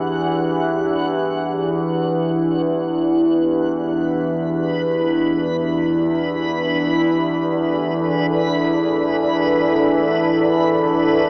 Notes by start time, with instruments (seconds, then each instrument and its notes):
Already playing: synth drone E2 E3, analog synth pad D4 E4 G4, synth texture F#5
3.52 synth texture B4
7.58 analog synth pad A4